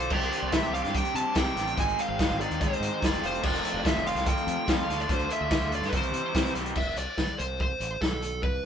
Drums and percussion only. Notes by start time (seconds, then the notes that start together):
0.00 closed hi-hat
0.10 kick, crash
0.21 closed hi-hat
0.32 closed hi-hat
0.52 kick, snare, closed hi-hat
0.64 closed hi-hat
0.74 closed hi-hat
0.84 snare, closed hi-hat
0.95 kick, closed hi-hat
1.05 closed hi-hat
1.15 closed hi-hat
1.35 kick, snare, closed hi-hat
1.46 closed hi-hat
1.57 snare, closed hi-hat
1.67 closed hi-hat
1.77 kick, closed hi-hat
1.88 closed hi-hat
1.99 closed hi-hat
2.19 kick, snare, closed hi-hat
2.30 closed hi-hat
2.40 closed hi-hat
2.51 closed hi-hat
2.61 kick, closed hi-hat
2.73 closed hi-hat
2.82 closed hi-hat
3.02 kick, snare, closed hi-hat
3.23 closed hi-hat
3.34 closed hi-hat
3.43 kick, crash
3.54 closed hi-hat
3.65 closed hi-hat
3.85 kick, snare, closed hi-hat
3.96 closed hi-hat
4.06 closed hi-hat
4.16 snare, closed hi-hat
4.26 kick, closed hi-hat
4.37 closed hi-hat
4.48 closed hi-hat
4.68 kick, snare, closed hi-hat
4.79 closed hi-hat
4.90 snare, closed hi-hat
5.00 closed hi-hat
5.09 kick, closed hi-hat
5.19 closed hi-hat
5.30 closed hi-hat
5.51 kick, snare, closed hi-hat
5.62 closed hi-hat
5.72 closed hi-hat
5.83 snare, closed hi-hat
5.92 kick, closed hi-hat
6.03 closed hi-hat
6.14 closed hi-hat
6.35 kick, snare, closed hi-hat
6.46 closed hi-hat
6.55 snare, closed hi-hat
6.66 closed hi-hat
6.75 kick, crash
6.96 closed hi-hat
7.18 kick, snare
7.39 closed hi-hat
7.60 kick
7.80 closed hi-hat
8.02 kick, snare
8.22 closed hi-hat
8.43 kick